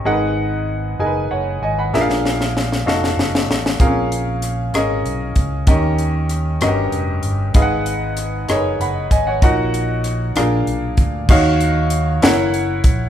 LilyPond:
<<
  \new Staff \with { instrumentName = "Grand piano" } { \time 6/8 \key ees \minor \tempo 4. = 64 << { r2 <des'' ges''>8 <ees'' aes''>16 <ges'' ces'''>16~ | <ges'' ces'''>16 r2 r8. | r2. | r2. |
r2 <ges'' ces'''>8 <ees'' aes''>16 <des'' ges''>16~ | <des'' ges''>16 r2 r8. | r2. | } \\ { <ees' aes' bes' ces'' ges''>4 r8 <ees' aes' bes' ces'' aes''>4 r8 | <d' aes' bes' fes'' f''>4 r8 <ees' ges' a' f''>4 r8 | <c' des' aes' bes' f''>4 r8 <des' aes' bes' ees''>4 r8 | <des' g' bes' ees''>4 r8 <des' ges' g' bes' ees''>4 r8 |
<ees' aes' ces'' f'' ges''>4 r8 <ees' aes' bes' ces'' des''>4 r8 | <ees' ges' bes' ges''>4 r8 <d' aes' bes' f''>4 r8 | <ees' ges' des'' f''>4 r8 <fes' bes' des'' ges''>4 r8 | } >> }
  \new Staff \with { instrumentName = "Grand piano" } { \clef bass \time 6/8 \key ees \minor aes,4. r4. | bes,4. r4. | bes,4. r4. | ees4. g,4. |
aes,4. r4. | bes,4. bes,4. | ees4. r4. | }
  \new Staff \with { instrumentName = "Fingered electric bass" } { \clef bass \time 6/8 \key ees \minor aes,,4. ges,,8 ges,,8 aes,,8 | bes,,4. f,,8 ges,,8 a,,8 | bes,,4. aes,,8 ces,8 des,8 | ees,4. g,,8 f,,8 g,,8 |
aes,,4. ges,,8 ges,,8 aes,,8 | bes,,4. bes,,8 ces,8 d,8 | ees,4. ges,,4 bes,,8 | }
  \new DrumStaff \with { instrumentName = "Drums" } \drummode { \time 6/8 r4. r4. | sn16 sn16 sn16 sn16 sn16 sn16 sn16 sn16 sn16 sn16 sn16 sn16 | <hh bd>8 hh8 <hh ss>8 <hh ss>8 hh8 <hh bd>8 | <hh bd>8 hh8 <hh ss>8 <hh ss>8 hh8 hh8 |
<hh bd>8 hh8 <hh ss>8 <hh ss>8 hh8 <hh bd>8 | <hh bd>8 hh8 <hh ss>8 <hh ss>8 hh8 <hh bd>8 | <cymc bd>8 hh8 hh8 <hh sn>8 hh8 <hh bd>8 | }
>>